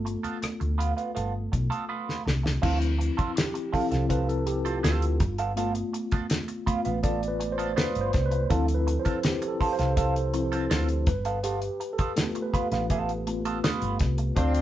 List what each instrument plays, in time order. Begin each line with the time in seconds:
Already playing: fingered electric bass G1, tine electric piano A3 B3 F4 A4
0.05 muted clean electric guitar stroke, closed hi-hat
0.23 clean electric guitar B3 F4 A4, muted fingered electric bass stroke, closed hi-hat
0.42 muted clean electric guitar stroke, muted fingered electric bass stroke, cross-stick, closed hi-hat
0.60 fingered electric bass D2, muted clean electric guitar stroke, closed hi-hat
0.78 clean electric guitar B3 F4 B4, closed hi-hat
0.97 clean electric guitar B3 F4 B4, closed hi-hat
1.15 fingered electric bass G1, clean electric guitar B3 F4 A4, closed hi-hat
1.52 fingered electric bass B1, muted clean electric guitar stroke, kick, closed hi-hat
1.70 clean electric guitar B3 F4 A4, closed hi-hat
1.89 clean electric guitar B3 F4 B4
2.09 snare
2.25 fingered electric bass C2, muted clean electric guitar stroke, snare
2.43 muted clean electric guitar stroke, snare
2.62 fingered electric bass D2, tine electric piano F3 C4 E4, clean electric guitar C4 F4 A4, kick, crash
2.82 closed hi-hat
2.98 muted clean electric guitar stroke, closed hi-hat
3.17 clean electric guitar C4 F4 A4, muted fingered electric bass stroke, kick, closed hi-hat
3.35 tine electric piano G4, muted clean electric guitar stroke, snare, closed hi-hat
3.54 muted clean electric guitar stroke, closed hi-hat
3.72 tine electric piano F3 C4 E4 A4, clean electric guitar C4 F4 A4, muted fingered electric bass stroke, kick, open hi-hat
3.91 fingered electric bass C2, clean electric guitar C4 F4 A4, snare, closed hi-hat
4.09 clean electric guitar C4 F4 A4, tine electric piano B4, kick, closed hi-hat
4.29 tine electric piano A4, closed hi-hat
4.46 tine electric piano G4, muted clean electric guitar stroke, closed hi-hat
4.65 clean electric guitar C4 F4 A4, tine electric piano F4, closed hi-hat
4.83 fingered electric bass D2, clean electric guitar C4 F4 A4, snare, closed hi-hat
5.02 closed hi-hat
5.20 fingered electric bass G1, muted clean electric guitar stroke, kick, closed hi-hat
5.38 clean electric guitar B3 F4 A4, closed hi-hat
5.56 tine electric piano A3 B3 F4, clean electric guitar B3 F4 A4, closed hi-hat
5.75 closed hi-hat
5.93 muted clean electric guitar stroke, closed hi-hat
6.11 clean electric guitar B3 F4 A4, muted fingered electric bass stroke, kick, closed hi-hat
6.30 muted clean electric guitar stroke, snare, closed hi-hat
6.48 muted clean electric guitar stroke, closed hi-hat
6.66 tine electric piano A3 B3 F4, clean electric guitar B3 F4 B4, muted fingered electric bass stroke, kick, closed hi-hat
6.85 fingered electric bass A1, clean electric guitar B3 F4 B4, closed hi-hat
7.03 clean electric guitar B3 F4 A4, tine electric piano D5, kick, closed hi-hat
7.23 closed hi-hat
7.28 tine electric piano B4
7.40 muted clean electric guitar stroke, closed hi-hat
7.52 tine electric piano C5
7.58 clean electric guitar B3 F4 A4, closed hi-hat
7.76 clean electric guitar B3 F4 B4, tine electric piano B4, snare, closed hi-hat
7.95 fingered electric bass G1, closed hi-hat
8.01 tine electric piano C5
8.13 fingered electric bass C2, muted clean electric guitar stroke, kick, snare, closed hi-hat
8.26 tine electric piano B4
8.31 muted clean electric guitar stroke, closed hi-hat
8.49 fingered electric bass D2, tine electric piano F3 C4 E4 A4, clean electric guitar C4 F4 A4, kick, closed hi-hat
8.68 muted clean electric guitar stroke, closed hi-hat
8.74 tine electric piano B4
8.87 muted clean electric guitar stroke, closed hi-hat
8.99 tine electric piano C5
9.05 clean electric guitar C4 F4 A4, muted fingered electric bass stroke, kick, closed hi-hat
9.23 tine electric piano G4, muted clean electric guitar stroke, snare, closed hi-hat
9.42 muted clean electric guitar stroke, closed hi-hat
9.48 tine electric piano A4
9.60 clean electric guitar C4 F4 A4, muted fingered electric bass stroke, kick, open hi-hat
9.73 tine electric piano C5
9.79 fingered electric bass C2, clean electric guitar C4 F4 A4, snare, closed hi-hat
9.97 clean electric guitar C4 F4 A4, tine electric piano A4, kick, closed hi-hat
10.16 closed hi-hat
10.34 tine electric piano F3 C4 E4, muted clean electric guitar stroke, closed hi-hat
10.52 clean electric guitar C4 F4 A4, closed hi-hat
10.70 fingered electric bass D2, clean electric guitar C4 F4 A4, snare, closed hi-hat
10.89 closed hi-hat
11.07 fingered electric bass G1, tine electric piano B4, muted clean electric guitar stroke, kick, closed hi-hat
11.25 clean electric guitar B3 F4 A4, closed hi-hat
11.43 clean electric guitar B3 F4 A4, tine electric piano G4, closed hi-hat
11.62 muted clean electric guitar stroke, closed hi-hat
11.80 muted clean electric guitar stroke, closed hi-hat
11.93 tine electric piano A4
11.98 clean electric guitar B3 F4 A4, muted fingered electric bass stroke, kick, closed hi-hat
12.16 tine electric piano A3 B3 F4, muted clean electric guitar stroke, snare, closed hi-hat
12.35 muted clean electric guitar stroke, closed hi-hat
12.42 tine electric piano B4
12.53 clean electric guitar B3 F4 B4, muted fingered electric bass stroke, kick, closed hi-hat
12.72 fingered electric bass A1, clean electric guitar B3 F4 B4, snare, closed hi-hat
12.90 clean electric guitar B3 F4 A4, kick, closed hi-hat
13.09 closed hi-hat
13.26 tine electric piano A3 B3 F4, muted clean electric guitar stroke, closed hi-hat
13.45 clean electric guitar B3 F4 A4, closed hi-hat
13.64 clean electric guitar B3 F4 B4, snare, closed hi-hat
13.82 fingered electric bass G1, closed hi-hat
13.99 fingered electric bass C2, muted clean electric guitar stroke, kick, snare, closed hi-hat
14.18 muted clean electric guitar stroke, closed hi-hat
14.36 fingered electric bass D2, horn section C4 D4 F4, clean electric guitar C4 F4 A4, kick, closed hi-hat
14.54 closed hi-hat